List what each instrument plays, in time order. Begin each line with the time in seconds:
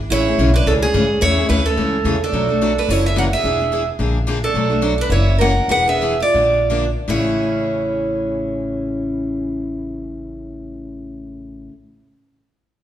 0.10 upright bass A1, steel-string acoustic guitar C#3 E3 A3 C#4 E4 G#4 C#5
0.27 steel-string acoustic guitar A3 C#4 G#4
0.38 upright bass B1, steel-string acoustic guitar C#3 E3 A3 C#4 G#4
0.54 steel-string acoustic guitar D4 B4
0.66 upright bass C#2, steel-string acoustic guitar C#3 E3 A3 C#4 G#4 A4
0.82 steel-string acoustic guitar C#4 G#4
0.94 upright bass G#2, steel-string acoustic guitar C#3 E3 A3 C#4 G#4
1.21 upright bass E2, steel-string acoustic guitar C#3 E3 A3 C#4 E4 G#4 C#5
1.38 steel-string acoustic guitar A3 C#4 G#4
1.49 upright bass D2, steel-string acoustic guitar C#3 E3 A3 C#4 E4 G#4 B4
1.66 steel-string acoustic guitar C#4 A4
1.77 upright bass C#2, steel-string acoustic guitar C#3 E3 A3 C#4 G#4
2.04 upright bass E2, steel-string acoustic guitar C#3 E3 A3 C#4 G#4
2.24 steel-string acoustic guitar D4 A4
2.32 upright bass B1, steel-string acoustic guitar B2 F#3 A3 D4 F#4
2.49 steel-string acoustic guitar A3 D4 F#4
2.61 steel-string acoustic guitar B2 F#3 A3 D4 F#4
2.78 steel-string acoustic guitar D4 B4
2.89 upright bass F#1, steel-string acoustic guitar C#3 E3 A#3 C#4 E4 F#4 C#5
3.06 steel-string acoustic guitar G#4 E5
3.16 steel-string acoustic guitar C#3 E3 A#3 C#4 F#4 A#4 F#5
3.33 steel-string acoustic guitar G#4 E5
3.44 upright bass E1, steel-string acoustic guitar E3 B3 D4 G#4
3.59 steel-string acoustic guitar B3 D4 G#4
3.72 steel-string acoustic guitar E3 B3 D4 G#4
3.99 upright bass A#1, steel-string acoustic guitar D3 F3 A#3 D4 G#4
4.27 steel-string acoustic guitar D3 F3 A#3 D4 G#4
4.44 steel-string acoustic guitar D4 A4
4.54 upright bass B1, steel-string acoustic guitar B2 F#3 A3 D4 F#4
4.70 steel-string acoustic guitar A3 D4 F#4
4.82 steel-string acoustic guitar B2 F#3 A3 D4 F#4
4.98 steel-string acoustic guitar D4 B4
5.10 upright bass F#1, steel-string acoustic guitar C#3 E3 A#3 C#4 E4 F#4 C#5
5.38 steel-string acoustic guitar C#3 E3 A#3 C#4 F#4 A#4 F#5
5.68 upright bass E1, steel-string acoustic guitar E3 B3 D4 G#4 B4 F#5
5.88 steel-string acoustic guitar B3 D4 G#4 E5
6.01 steel-string acoustic guitar E3 B3 D4 G#4
6.20 steel-string acoustic guitar F4 D5
6.34 upright bass A#1, steel-string acoustic guitar D3 F3 A#3 D4 G#4
6.70 steel-string acoustic guitar D3 F3 A#3 D4 G#4
7.08 upright bass A1, steel-string acoustic guitar A2 C#3 E3 A3 C#4 E4 G#4 C#5